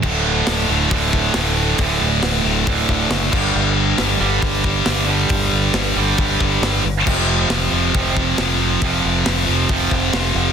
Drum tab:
CC |x-------|-------x|--------|--------|
HH |--o-o-o-|o-o-o-o-|--o-o-o-|o-o-o-o-|
SD |--o---o-|--o---o-|--o---o-|--o---o-|
BD |o---oo--|o---oo-o|----oo--|o---oo--|

CC |x-------|--------|
HH |--o-o-o-|o-o-o-o-|
SD |--o---o-|--o---o-|
BD |o---oo--|o---oo--|